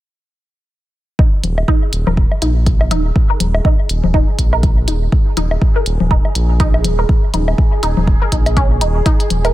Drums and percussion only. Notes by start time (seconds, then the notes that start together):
1.19 kick
1.44 closed hi-hat, low conga
1.58 low woodblock
1.68 kick
1.93 closed hi-hat
2.07 low conga
2.17 kick
2.32 low woodblock
2.42 closed hi-hat
2.66 kick, closed hi-hat
2.81 low woodblock
2.91 closed hi-hat, low conga
3.16 kick
3.40 closed hi-hat, low conga
3.55 low woodblock
3.65 kick
3.89 closed hi-hat
4.04 low conga
4.14 kick
4.39 kick, closed hi-hat
4.53 low woodblock
4.63 kick, closed hi-hat
4.88 closed hi-hat
5.12 kick
5.37 closed hi-hat, low conga
5.51 low woodblock
5.62 kick
5.86 closed hi-hat
6.00 low conga
6.11 kick
6.25 low woodblock
6.35 closed hi-hat
6.60 kick, closed hi-hat
6.74 low woodblock
6.85 closed hi-hat, low conga
7.09 kick
7.34 closed hi-hat, low conga
7.48 low woodblock
7.58 kick
7.83 closed hi-hat
7.97 low conga
8.07 kick
8.32 kick, closed hi-hat
8.46 closed hi-hat, low woodblock
8.57 kick, closed hi-hat
8.81 closed hi-hat
9.06 kick, closed hi-hat
9.20 closed hi-hat
9.30 closed hi-hat, low conga
9.45 closed hi-hat, low woodblock